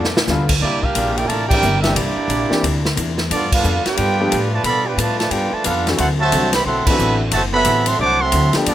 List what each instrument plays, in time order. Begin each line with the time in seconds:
Already playing: upright bass F2, trombone section F3 B3 D4, hollow-body jazz guitar G3 B3 F4, trumpet section B3 F4 A4 D5
0.00 hollow-body jazz guitar A4
0.05 snare
0.17 snare
0.27 upright bass D2, grand piano D3 G3 A3 B3 F4, hollow-body jazz guitar G3 B3 F4, snare, hi-hat pedal
0.32 hollow-body jazz guitar A4
0.49 kick, crash
0.61 upright bass C2, hollow-body jazz guitar C3 A#3 D4 E4, trombone section G3 A#3 D4, trumpet section A#3 E4 G4 D5
0.83 trombone section G3 A#3 F4, trumpet section D4 G4 A#4 F5, kick
0.95 upright bass A#1, hollow-body jazz guitar C3 A#3 D4 E4, hi-hat pedal, ride
1.16 trombone section A#3 E4 G4, trumpet section E4 A#4 D5 G5, ride
1.28 upright bass A1, hollow-body jazz guitar C3 A#3 D4, trombone section A3, trumpet section F4 A#4 D5 A5, ride
1.32 hollow-body jazz guitar E4
1.48 trombone section A#3 E4 G4, trumpet section E4 A#4 D5 G5, kick, crash
1.52 grand piano E3 A#3 C4 D4 G4
1.62 upright bass G1, hollow-body jazz guitar C3 A#3 D4 E4, hi-hat pedal
1.82 grand piano E3 A#3, trombone section G3 A#3 E4, trumpet section D4 G4 A#4 E5, snare, ride
1.86 grand piano C4 D4 G4
1.93 upright bass C2, hollow-body jazz guitar C3, trombone section G3 A#3 D4, trumpet section A#3 E4 G4 D5, ride
1.97 hollow-body jazz guitar A#3 D4 E4
2.16 muted upright bass stroke
2.28 upright bass A#1, hollow-body jazz guitar C3 A#3 D4, hi-hat pedal, ride
2.33 hollow-body jazz guitar E4
2.50 grand piano E3 A#3 C4 D4 G4, muted upright bass stroke, snare
2.63 upright bass D2, hollow-body jazz guitar C3 A#3 D4 E4, ride
2.85 snare
2.96 upright bass E2, hollow-body jazz guitar C3 A#3 D4 E4, hi-hat pedal, ride
3.18 snare
3.28 upright bass G2, hollow-body jazz guitar G3 B3 F4 A4, trumpet section B3 A4, trombone section B3, ride
3.32 trombone section F3 D4, trumpet section F4 D5
3.52 trombone section B3 D4 F4, trumpet section D4 A4 B4 F5, kick, crash
3.64 upright bass F2, hollow-body jazz guitar G3 B3 F4 A4, hi-hat pedal
3.85 trombone section B3 D4 G4, trumpet section F4 B4 D5 G5, muted upright bass stroke, snare, ride
3.97 upright bass G2, hollow-body jazz guitar G3 B3 F4 A4, ride
4.20 grand piano F3 A3 B3 D4 G4
4.30 upright bass A2, hollow-body jazz guitar G3 B3 F4 A4, hi-hat pedal, ride
4.52 trombone section D3 F3 A3, trumpet section F4 B4 D5 A5
4.63 upright bass B2, trombone section D3 F3 B3, hollow-body jazz guitar G3 B3 F4 A4, trumpet section A4 D5 F5 B5, ride
4.86 trombone section B3 D4 G4, trumpet section F4 B4 D5 G5
4.97 upright bass A2, trombone section D3 F3 A3, hollow-body jazz guitar G3 B3 F4 A4, trumpet section F4 B4 D5 A5, hi-hat pedal, ride
5.19 trombone section D3 F3 A3, trumpet section F4 B4 D5 A5, snare, ride
5.30 upright bass G2, hollow-body jazz guitar G3 B3 F4 A4, trombone section B3 D4 G4, trumpet section F4 B4 D5 G5, ride
5.52 trombone section D3 F3 A3, trumpet section F4 B4 D5 A5, muted upright bass stroke
5.64 upright bass F2, hollow-body jazz guitar G3 B3 F4 A4, trombone section B3 D4 F4, trumpet section D4 A4 B4 F5, hi-hat pedal, ride
5.87 grand piano E3 A3 C4 D4 F#4, snare, ride
5.97 upright bass D2, hollow-body jazz guitar D3 F#3 C4 E4, trombone section A3 C4 F#4, trumpet section E4 A4 C5 F#5, ride
6.17 trombone section C3 F#3 A3, trumpet section F#4 C5 E5 A5
6.32 upright bass C2, hollow-body jazz guitar D3 F#3 C4 E4, grand piano E3 A3 C4 D4 F#4, hi-hat pedal, ride
6.52 trombone section B3, trumpet section G4 C5 E5 B5, snare, ride
6.64 upright bass B1, hollow-body jazz guitar D3 F#3 C4 E4, trombone section F#3 A3 C4, trumpet section A4 E5 F#5 C6
6.85 trombone section C3 F#3 B3, grand piano E3 A3, trumpet section A4 E5 F#5 B5, muted upright bass stroke, kick, crash
6.89 grand piano C4 D4 F#4
6.99 upright bass A1, hollow-body jazz guitar D3 F#3 C4 E4, hi-hat pedal
7.31 upright bass F#1, trombone section C3 F#3 A3, hollow-body jazz guitar D3 F#3 C4, trumpet section F#4 C5 E5 A5, ride
7.35 hollow-body jazz guitar E4
7.53 trombone section C3 F#3 B3, trumpet section A4 E5 F#5 B5
7.65 upright bass A1, hollow-body jazz guitar D3 F#3 C4, hi-hat pedal, ride
7.69 hollow-body jazz guitar E4
7.86 trombone section F#3 A3 C4, trumpet section A4 E5 F#5 C6, ride
7.98 upright bass C2, hollow-body jazz guitar D3 F#3 C4, trombone section F#3 A3 D4, trumpet section C5 F#5 A5 D6
8.02 hollow-body jazz guitar E4
8.20 trombone section F#3 A3 C4, trumpet section A4 E5 F#5 C6
8.32 upright bass D2, hollow-body jazz guitar D3 F#3 C4, hi-hat pedal, ride
8.36 hollow-body jazz guitar E4
8.53 grand piano F3 A3 B3 D4 G4, muted upright bass stroke, snare, ride
8.66 upright bass G2, trombone section F3 B3 D4, hollow-body jazz guitar G3 B3 F4, trumpet section B3 F4 A4 D5, ride
8.70 hollow-body jazz guitar A4